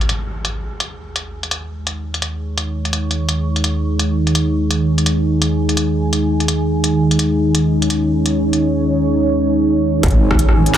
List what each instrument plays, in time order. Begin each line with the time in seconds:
Already playing: ambient pad D#3 D#4 G#4 G#5
0.01 closed hi-hat
0.09 closed hi-hat
0.45 closed hi-hat
0.80 closed hi-hat
1.16 closed hi-hat
1.43 closed hi-hat
1.51 ambient pad C#6, closed hi-hat
1.87 closed hi-hat
2.14 closed hi-hat
2.22 closed hi-hat
2.58 closed hi-hat
2.85 closed hi-hat
2.93 closed hi-hat
3.11 closed hi-hat
3.29 closed hi-hat
3.56 closed hi-hat
3.64 closed hi-hat
3.99 closed hi-hat
4.27 closed hi-hat
4.35 ambient pad G#5, closed hi-hat
4.71 closed hi-hat
4.98 closed hi-hat
5.06 closed hi-hat
5.42 closed hi-hat
5.69 closed hi-hat
5.77 closed hi-hat
6.13 closed hi-hat
6.40 closed hi-hat
6.48 closed hi-hat
6.84 closed hi-hat
7.11 closed hi-hat
7.19 ambient pad C#5, closed hi-hat
7.55 closed hi-hat
7.82 closed hi-hat
7.90 closed hi-hat
8.26 closed hi-hat
8.53 closed hi-hat
10.03 wobble bass G#1, ambient pad D#3 D#4 G#4 G#5, kick, cross-stick, closed hi-hat, impact
10.06 closed hi-hat
10.08 closed hi-hat
10.11 closed hi-hat
10.31 kick, cross-stick
10.39 closed hi-hat
10.49 cross-stick
10.66 closed hi-hat
10.74 cross-stick, clap, closed hi-hat